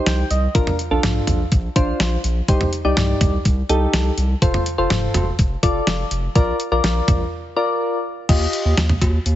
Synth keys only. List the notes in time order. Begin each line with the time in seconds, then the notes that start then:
Already playing: D#4 G4 C5
0.06 G5
0.31 D#5
0.55 D4 F4 A#4
0.91 D4 F4 A4
1.76 D4 F4 C5
2.48 D#4 G4 C5
2.85 D#4 G4 D5
3.69 D#4 G4 A4
4.42 F4 A4 C5
4.78 F4 A4 C5
5.63 F4 A4 D5
6.35 F4 A#4 D5
6.72 F4 A#4 D5
7.56 F4 A#4 D5
8.29 F4 G4 D#5